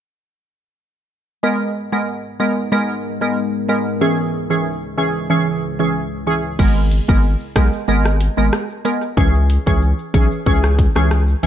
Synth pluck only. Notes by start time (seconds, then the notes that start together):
1.43 G#3 B3 A#4
1.92 G#3 B3 A#4
2.40 G#3 B3 A#4
2.72 G#3 B3 A#4
3.21 G#3 B3 A#4
3.69 G#3 B3 A#4
4.01 E3 C#4 G#4
4.50 E3 C#4 G#4
4.98 E3 C#4 G#4
5.30 E3 C#4 G#4
5.79 E3 C#4 G#4
6.27 E3 C#4 G#4
6.59 G#3 B3 A#4
7.08 G#3 B3 A#4
7.56 G#3 B3 A#4
7.88 G#3 B3 A#4
8.37 G#3 B3 A#4
8.85 G#3 B3 A#4
9.17 E3 C#4 G#4
9.66 E3 C#4 G#4
10.14 E3 C#4 G#4
10.46 E3 C#4 G#4
10.96 E3 C#4 G#4
11.43 E3 C#4